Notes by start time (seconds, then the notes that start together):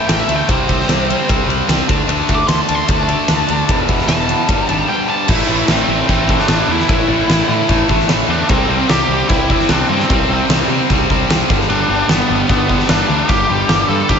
0.08 A1 A2 E3 A3 G5, snare, ride
0.21 E5
0.28 D2 A2 E3 A3, ride
0.36 G5
0.48 C2 C3 G3 C4 C5, kick, ride
0.69 C2 C3 G3 C4, kick, ride
0.80 snare
0.89 C2 C3 G3 C4, snare, ride
1.09 C3 G3 C4, ride
1.29 C2 C3 G3 C4, kick, ride
1.47 C2 C3 G3 C4, ride
1.68 C2 C3 G3 C4, snare, ride
1.87 D2 D3 A3 D4, kick, ride
2.07 D2 D3 A3 D4, ride
2.28 D2 D3 A3 D4, kick, ride
2.35 D6
2.47 D2 D3 A3 D4 C6, snare, ride
2.61 A5
2.68 D2 D3 A3 D4, ride
2.75 C6
2.88 D2 D3 A3 D4 A5, kick, ride
3.03 A5
3.08 D3 A3 D4, ride
3.28 D2 D3 A3 D4, snare, ride
3.48 D2 D3 A3 D4, ride
3.68 E1 E2 B2 E3, kick, ride
3.88 E1 E2 B2 E3, kick, ride
3.99 snare
4.08 E1 E2 B2 E3 A5, snare, ride
4.28 E2 B2 E3, ride
4.48 G1 G2 D3 G3, kick, ride
4.68 G#1 G2 D3 G3, ride
4.89 G2 D3 G3 G5
5.07 G2 D3 G3 A5
5.28 A1 A2 E3 A3 E4, kick, crash
5.47 A1 A2 E3 A3
5.67 A1 A2 E3 A3 C4, snare, crash
5.87 A1 A2 E3 A3
6.07 A1 A2 E3 A3 C4, kick, crash
6.27 A2 E3 A3, kick
6.39 D4, snare
6.48 A1 A2 E3 A3, snare, crash
6.68 E2 A2 E3 A3 E4
6.80 snare
6.88 A1 A2 E3 A3, kick, crash
7.07 A1 A2 E3 A3
7.28 A1 A2 E3 A3, snare, crash
7.48 A2 E3 A3
7.68 A1 A2 E3 A3, kick, crash
7.88 A1 A2 E3 A3, kick
8.00 snare
8.08 A1 A2 E3 A3, snare, crash
8.28 E2 A2 E3 A3 D4
8.48 C2 C3 G3 C4, kick, crash
8.68 C2 C3 G3 C4
8.89 C2 C3 G3 C4 G4, snare, crash
9.08 C2 C3 G3 C4
9.29 C2 C3 G3 C4 E4, kick, crash
9.49 C3 G3 C4, kick
9.59 snare
9.69 C2 C3 G3 C4 D4, snare, crash
9.89 G2 C3 G3 C4
10.00 snare
10.10 C2 C3 G3 C4, kick, crash
10.29 C2 C3 G3 C4
10.49 C2 C3 G3 C4, snare, crash
10.68 C3 G3 C4
10.90 C2 C3 G3 C4, kick, crash
11.10 C2 C3 G3 C4, kick
11.28 C2 C3 G3 C4, snare, crash
11.49 G1 G2 D3 G3, kick
11.60 snare
11.69 G1 G2 D3 G3 D4, crash
11.89 G1 G2 D3 G3 D4
12.08 G1 G2 D3 G3 B3, snare, crash
12.29 G1 G2 D3 G3
12.49 G1 G2 D3 G3 B3, kick, crash
12.69 G2 D3 G3, kick
12.80 snare
12.89 G1 G2 D3 G3 D4, snare, crash
13.08 D2 G2 D3 G3
13.28 G1 G2 D3 G3 G4, kick, crash
13.47 G1 G2 D3 G3
13.67 G1 G2 D3 G3, snare, crash
13.88 G2 D3 G3 A4
14.08 G1 G2 D3 G3 G4, kick, crash